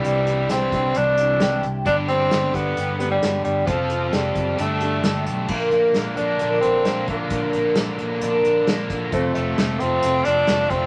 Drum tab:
CC |--------|--------|--------|x-------|
HH |xxxxxxxx|xxxxxxxx|xxxxxxxx|-xxxxxxx|
SD |--o---o-|--o---o-|--o---o-|--o---o-|
BD |---o----|o--o----|o--o----|o------o|

CC |--------|--------|
HH |xxxxxxxx|xxxxxxxx|
SD |--o---o-|--o---o-|
BD |o------o|o------o|